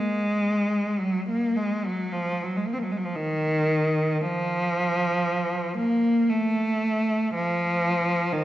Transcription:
cello
Already playing: G#3
0.99 F#3
1.29 A#3
1.57 G#3
1.85 F#3
2.12 F3
2.43 F#3
2.56 G#3
2.66 A#3
2.73 C4
2.79 A#3
2.84 F#3
2.92 G#3
2.97 F#3
3.05 F3
3.15 D#3
4.21 F3
5.77 A#3
6.29 A3
7.34 F3
8.33 D#3

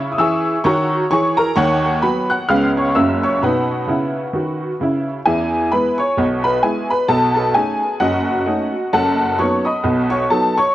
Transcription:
honky-tonk piano
Already playing: C#3 E4 E5 C#6 E6
0.12 D#6
0.19 E3 G#4 E5 C#6 E6
0.64 D#3 F#4 C#5 A#5 C#6
1.11 E3 G#4 C#5 C#6
1.37 A#4 A#5
1.56 D#2 D#3 C#5 F#5 C#6
2.02 F#3 B3 F#4 B4 B5
2.30 F#5 F#6
2.48 C#2 C#3 G#3 B3 C#4 F5 F6
2.77 C#5 C#6
2.95 F#1 F#2 F#3 A#3 C#4 E5 E6
3.23 C#5 C#6
3.42 B2 D#4 B4 F#5 B5
3.87 C#3 E4
4.33 D#3 F#4
4.81 C#3 E4
5.25 E2 E3 G#4 E5 G#5
5.72 G#3 B3 E4 B4 B5
5.98 C#5 C#6
6.17 B1 B2
6.44 B4 B5
6.63 G#3 B3 E4 G#4 G#5
6.90 B4 B5
7.09 B1 B2 A4 A5
7.35 A4 A5
7.54 A3 C#4 D#4 G#4 G#5
8.00 F#1 F#2 F#4 D#5 F#5
8.46 A3 C#4 D#4
8.93 F#1 F#2 A4 F#5 A5
9.39 F#3 B3 D#4 C#5 C#6
9.65 D#5 B5 D#6
9.84 B1 B2
10.10 C#5 C#6
10.30 F#3 B3 D#4 A4 A5
10.58 C#5 C#6

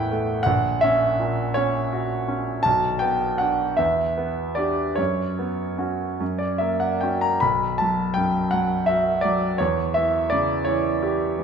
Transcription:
grand piano
Already playing: A1 E2 A3 E4 C#5 E5 F#5 G5
0.11 A3
0.43 A#1 F#5
0.81 C#4 E5
1.19 A#2
1.54 C#4 C#5
1.93 F#4
2.28 C#4
2.63 B1 A5
2.99 B3 G5
3.38 D4 F#4 F#5
3.77 E2 E5
4.18 B3
4.55 D4 G4 D5
4.95 F#2 C#5
5.39 B3
5.78 C#4 F#4
6.20 F#2
6.39 D5
6.58 A#3 E5
6.80 F#5
7.01 C#4 F#4 G5
7.21 A#5
7.40 B1 B5
7.78 F#3 A5
8.14 F#2 G5
8.51 F#3 F#5
8.86 F#4 E5
9.21 F#3 D5
9.58 E2 C#5
9.94 E3 E5
10.30 C#3 D5
10.65 E3 C#5
11.02 G4
11.38 E3

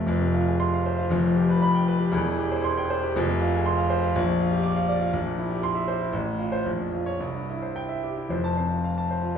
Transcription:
grand piano
Already playing: F1 F2 C3 F4 A4 F5
0.06 F1 F2
0.21 C3
0.35 F4
0.48 G#4
0.60 C6
0.74 F5
0.86 C5
0.99 F4
1.10 F1 F2
1.23 F3
1.36 G4
1.50 B4
1.62 B5
1.75 G5
1.88 B4
2.00 G4
2.12 E1 E2
2.26 E3
2.38 G4
2.51 C5
2.64 C6
2.78 G5
2.90 C5
3.03 G4
3.16 F1 F2
3.29 C3
3.41 F4
3.53 G#4
3.66 C6
3.78 F5
3.90 C5
4.02 F4
4.15 A#1
4.27 F2
4.40 F4
4.52 G4
4.64 D6
4.76 F5
4.89 D5
5.01 F4
5.13 A#1
5.26 A#2
5.38 E4
5.51 G4
5.63 C6
5.75 E5
5.88 C5
6.01 E4
6.13 A1
6.26 A2
6.39 F4
6.52 C5
6.66 A#1
6.80 F2
6.93 F4
7.06 C#5
7.20 C2
7.35 G2
7.49 E4
7.62 C5
7.76 G5
7.89 E5
8.03 G4
8.17 E4
8.29 F1 F2 C5
8.44 A5
8.57 C4 C5
8.70 F4
8.84 F5
8.97 A5
9.11 C5
9.23 F4

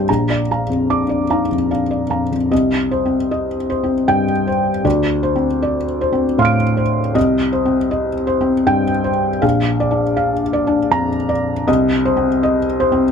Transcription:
felt piano
Already playing: G2 C4 D4 C5 D#5 G5
0.09 A#1 A#5
0.30 D5
0.51 F5 A#5
0.70 F2
0.90 D4 D6
1.09 D5
1.30 D#4 F5 A#5
1.51 F2
1.71 D4 F5
1.91 D5
2.10 F2 F5 A#5
2.32 F2
2.51 C2 D#5
2.91 C5
3.06 C4
3.31 D#5
3.70 C5
3.84 C4
4.08 G2 G5
4.47 C5
4.84 D2 D5
5.23 C5
5.36 C4
5.62 D5
6.01 C5
6.13 C4
6.38 A2 F5 C6 F6
6.45 D7
6.77 C5
7.15 C2 D#5
7.53 C5
7.65 C4
7.91 D#5
8.27 C5
8.41 C4
8.66 G2 G5
9.04 C5
9.42 A#1 F5
9.80 D5
9.91 D4
10.17 F5
10.53 D5
10.67 D4
10.91 F2 A#5
11.29 D5
11.68 C2 D#5
12.05 C5
12.17 C4
12.43 D#5
12.80 C5
12.92 C4

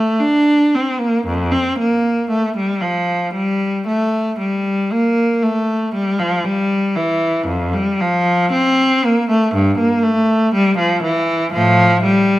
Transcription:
cello
Already playing: A3
0.20 D4
0.74 C4
0.99 A#3
1.27 F2
1.52 C4
1.78 A#3
2.30 A3
2.56 G3
2.81 F3
3.34 G3
3.87 A3
4.39 G3
4.92 A#3
5.42 A3
5.94 G3
6.19 F3
6.44 G3
6.96 E3
7.47 F2
7.74 G3
8.00 F3
8.52 C4
9.04 A#3
9.29 A3
9.54 G2
9.78 A#3
10.03 A3
10.54 G3
10.77 F3
11.03 E3
11.53 A2 F3
12.03 G3

